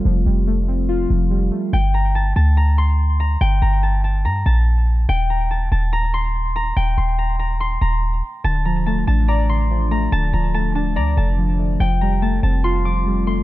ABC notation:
X:1
M:4/4
L:1/8
Q:1/4=143
K:Gm
V:1 name="Harp"
z8 | g b a a b c'2 b | g b a a b a3 | g b a a b c'2 b |
g c' b b c' b3 | a b a a b c'2 b | a b a a b a3 | g b a a c' d'2 c' |]
V:2 name="Synth keys"
[F,G,A,F] G, A, C F F, G, A, | z8 | z8 | z8 |
z8 | D, F, A, D d D, F, A, | D, F, A, D d D, F, A, | F, G, A, C F F, G, A, |]
V:3 name="808-style bass" clef=bass
F,,, F,,,4 F,,,2 z | G,,,3 D,,4- D,, | G,,, G,,,3 G,, B,,,3 | E,,,3 E,,,4- E,,, |
E,,, E,,,4 E,,,2 z | D,,,3 A,,,4- A,,, | D,,, D,,,3 D,, F,,,3 | F,,,3 F,,,4- F,,, |]